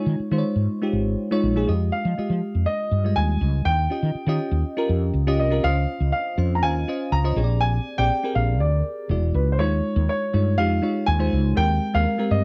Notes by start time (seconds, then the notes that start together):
Already playing: G#3 D#4 F4 C#5 G#5
0.06 D#3
0.19 muted fretless electric bass stroke
0.31 D#3 G#3 D#4 F4 C5
0.38 C#5
0.56 G#2
0.82 G#3 D#4 F4 G4
0.93 G#1
1.31 G#3 D#4 F4 C#5
1.43 A#1
1.56 G#3 D#4 F4 G#4
1.67 F2 G#3 F4 G4 D#5
1.92 F5
2.05 F3
2.18 G#3 F4 G4 D#5, muted fretless electric bass stroke
2.30 F3
2.55 F2
2.66 D#5
2.91 G2
3.04 G3 G#3 F4 D#5
3.16 D#2 G#5
3.41 C#2
3.65 D#2 G5
3.90 C#4 F4 G4 D#5
4.03 D#3
4.15 muted fretless electric bass stroke
4.26 D#3 C#4 F4 G4 D#5
4.51 D#2
4.77 C#4 F4 G4 A#4
4.89 F2
5.14 C#2
5.27 C#4 F4 G4 D#5
5.39 C2 D#5
5.50 C#4 F4 G4 A#4
5.63 C#2 C#4 F4 C5 D#5 F5
6.00 C#2
6.12 F5
6.37 F2 C#4 F4 C5 F5
6.55 A#5
6.62 D#2 C#4 F4 C5 F5 G#5
6.88 C#4 F4 C5 D#5
7.12 C#2 A#5
7.24 C#4 F4 C5 D#5
7.36 A#1 C4 G4 G#4 C#5
7.44 D5
7.61 G#5
7.98 A#1 C4 G4 G#4 D5 G5
8.24 C4 G4 G#4 A#4
8.35 A#1 F5
8.60 D2 D5
9.09 E1 G#3 E4 F#4 D5
9.34 C#2 B4
9.52 C5
9.59 D#2 G#3 D#4 F4 C#5
9.96 D#2
10.09 C#5
10.33 G2 G#3 D#4 F4 C#5
10.58 F2 G#3 D#4 F4 G4 F5
10.82 G#3 D#4 F4 C#5
11.06 D#2 G#5
11.19 G#3 D#4 F4 C5
11.33 C#2
11.56 D#2 G#3 C4 G4 A#4 G5
11.94 D#2 G#3 C4 G4 A#4 F5
12.18 G#3 C4 G4 A#4
12.31 G2 D#5